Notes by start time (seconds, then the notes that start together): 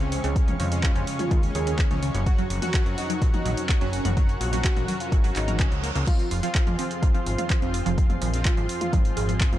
Already playing: F2 C3 G#4 C#5 F5 C#6
0.00 C#2 C#3 G#3 C4 C#4, closed hi-hat
0.12 C#4 C#5, open hi-hat
0.24 C#2 C#3 C#4, closed hi-hat
0.36 C#3 G#3 C#4, kick, closed hi-hat
0.48 C#4 C#5, closed hi-hat, mid tom
0.60 F2 C#3 C#4, open hi-hat
0.72 C#3 G#3 C#4, closed hi-hat
0.83 C#4 F4 C#5, kick, clap, closed hi-hat
0.96 F2 C#3 C#4, closed hi-hat
1.07 open hi-hat
1.19 C#4 F4 C#5, closed hi-hat, mid tom
1.31 D#2 C#3 C#4, kick, closed hi-hat
1.43 open hi-hat
1.55 D#2 C#4 G#4 C#5, open hi-hat
1.67 C#3 C#4, closed hi-hat
1.79 kick, clap, closed hi-hat
1.91 C#2 C#3 G#3 C#4 C#5, closed hi-hat, mid tom
2.03 C#3 C#4, open hi-hat
2.14 F#1, closed hi-hat
2.26 F#3 C#4 F#4 A#4 F#5, kick, closed hi-hat
2.38 F#3 F#4, closed hi-hat
2.50 F#1, open hi-hat
2.62 F#3 C#4 F#4 F#5, closed hi-hat, mid tom
2.74 F#3 F#4, kick, clap, closed hi-hat
2.86 F#2, closed hi-hat
2.98 D#4 F#4 F#5, open hi-hat
3.10 F#3 F#4, closed hi-hat
3.22 A#1, kick, closed hi-hat
3.34 D#4 F#4 F#5, closed hi-hat, mid tom
3.45 A#1 F#3 F#4, open hi-hat
3.57 closed hi-hat
3.69 F#4 F#5, kick, clap, closed hi-hat
3.81 F#1 F#3 C#4 F#4, closed hi-hat
3.93 open hi-hat
4.05 F#1 F#4 F#5, closed hi-hat, mid tom
4.17 F#3 C#4 F#4, kick, closed hi-hat
4.29 closed hi-hat
4.41 A#1 F#4 F#5, open hi-hat
4.53 F#3 C#4 F#4, closed hi-hat
4.64 F#4, kick, clap, closed hi-hat
4.76 A#1 F#4 F#5, closed hi-hat, mid tom
4.88 F#3 F#4, open hi-hat
5.00 F4, closed hi-hat
5.12 G#1 F#4 F#5, kick, closed hi-hat, reverse cymbal
5.24 F#3 F#4, open hi-hat
5.36 G#1 D#4, clap, open hi-hat
5.48 A#4 A#5, closed hi-hat, mid tom
5.60 C#3 C#4, kick, clap, closed hi-hat
5.72 C#2, closed hi-hat
5.83 A#3 A#4, open hi-hat
5.95 C#2 A#3 A#4, closed hi-hat
6.07 F2 F3 C4 F4 G#4 C5 F5 C6, kick, closed hi-hat, crash
6.19 closed hi-hat
6.31 F1 F4 F5, open hi-hat
6.43 F3 C4 F4, closed hi-hat
6.55 kick, clap, closed hi-hat
6.67 F2 F4 F5, closed hi-hat, mid tom
6.79 F3 C4 F4, open hi-hat
6.91 closed hi-hat
7.02 G#1 F4 F5, kick, closed hi-hat
7.14 F3 C4 F4, closed hi-hat
7.26 G#1, open hi-hat
7.38 F4 F5, closed hi-hat, mid tom
7.50 F3 F4, kick, clap, closed hi-hat
7.62 F1 F3 C4 F4, closed hi-hat
7.74 F4 F5, open hi-hat
7.86 F1 F3 F4, closed hi-hat
7.98 F3 C4 F4, kick, closed hi-hat
8.10 F4 F5, closed hi-hat, mid tom
8.22 A#1 F3 F4, open hi-hat
8.34 F3 C4 F4, closed hi-hat
8.45 F4 F5, kick, clap, closed hi-hat
8.57 G#1 F3 F4, closed hi-hat
8.69 open hi-hat
8.81 F4 F5, closed hi-hat, mid tom
8.93 G#1 F3 F4, kick, closed hi-hat
9.05 open hi-hat
9.17 G#1 F4 G#4 F5, open hi-hat
9.29 F3 F4, closed hi-hat
9.41 kick, clap, closed hi-hat
9.53 F1 F3 C4 F4 F5, closed hi-hat, mid tom